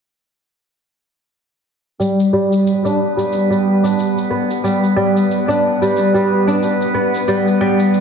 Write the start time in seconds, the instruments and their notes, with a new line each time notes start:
2.00 oud G3, synth texture B3 B4, shaker
2.20 shaker
2.33 oud G3
2.53 shaker
2.67 shaker
2.85 oud D4, shaker
3.17 oud G3, shaker
3.33 shaker
3.50 oud G3, shaker
3.83 oud D4, shaker
3.99 shaker
4.18 shaker
4.30 oud B3
4.51 shaker
4.64 oud G3, shaker
4.84 shaker
4.96 oud G3
5.17 shaker
5.31 shaker
5.48 oud D4, shaker
5.82 oud G3, shaker
5.97 shaker
6.14 oud G3, shaker
6.47 oud D4, shaker
6.63 shaker
6.81 shaker
6.94 oud B3
7.15 shaker
7.28 oud G3, shaker
7.47 shaker
7.61 oud G3
7.80 shaker
7.94 shaker